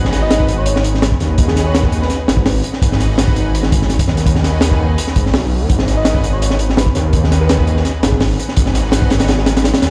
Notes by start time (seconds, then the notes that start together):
Already playing: G#1 B3 D#4 F#4 G#4 B4
0.05 snare
0.13 snare, closed hi-hat
0.22 D#5
0.31 snare, closed hi-hat
0.40 kick
0.48 closed hi-hat
0.58 C#5
0.66 closed hi-hat
0.76 snare
0.84 closed hi-hat
0.94 snare
1.02 snare, closed hi-hat
1.12 kick
1.20 D#2 B3 D#4 F#4 G#4 B4, snare, closed hi-hat
1.38 B3 D#4 F#4 G#4 B4, kick, closed hi-hat
1.48 G#4, snare
1.56 snare, closed hi-hat
1.66 C#5
1.75 snare, closed hi-hat
1.83 kick
1.92 closed hi-hat
2.02 B4, snare
2.10 snare, closed hi-hat
2.28 G#1, snare, closed hi-hat
2.37 kick
2.46 snare, open hi-hat
2.64 B3 D#4 F#4 G#4 B4, closed hi-hat
2.73 snare
2.82 G#1 B3 D#4 F#4 G#4 B4, kick, closed hi-hat
2.92 snare
3.00 snare, closed hi-hat
3.18 snare, closed hi-hat
3.28 kick
3.36 closed hi-hat
3.55 closed hi-hat
3.63 snare
3.72 kick, closed hi-hat
3.82 snare
3.90 snare, closed hi-hat
3.99 kick, closed hi-hat
4.08 D#2 B3 D#4 F#4 G#4 B4, snare
4.17 snare, closed hi-hat
4.26 B3 D#4 F#4 G#4 B4, kick, closed hi-hat
4.35 snare
4.44 snare, closed hi-hat
4.61 snare, closed hi-hat
4.71 kick
4.98 closed hi-hat
5.07 snare
5.16 G#1, kick, closed hi-hat
5.26 snare
5.33 B1, snare, open hi-hat
5.61 D#2
5.70 G#1 B3 D#4 F#4 G#4 B4, kick, closed hi-hat
5.79 snare
5.88 snare, closed hi-hat
5.97 D#5
6.05 snare, closed hi-hat
6.15 kick
6.24 closed hi-hat
6.33 C#5
6.42 closed hi-hat
6.50 snare
6.59 closed hi-hat
6.70 snare
6.77 B4, snare, closed hi-hat
6.86 kick
6.95 D#2 B3 D#4 F#4 G#4 B4, snare, closed hi-hat
7.13 B3 D#4 F#4 G#4 B4, kick, closed hi-hat
7.24 snare
7.31 snare, closed hi-hat
7.41 B4
7.49 snare, closed hi-hat
7.58 kick
7.67 closed hi-hat
7.77 snare
7.85 snare, closed hi-hat
8.03 G#1 G#4, snare, closed hi-hat
8.12 G#4, kick
8.20 snare, open hi-hat
8.39 B3 D#4 F#4 G#4 B4, closed hi-hat
8.49 snare
8.57 G#1 B3 D#4 F#4 G#4 B4, kick, closed hi-hat
8.66 snare
8.74 snare, closed hi-hat
8.92 snare, closed hi-hat
9.02 kick
9.10 snare, closed hi-hat
9.20 snare, closed hi-hat
9.28 snare, closed hi-hat
9.38 snare
9.46 snare, closed hi-hat
9.57 snare, closed hi-hat
9.64 snare, closed hi-hat
9.74 snare, closed hi-hat
9.82 D#2 B3 D#4 F#4 G#4 B4, snare, closed hi-hat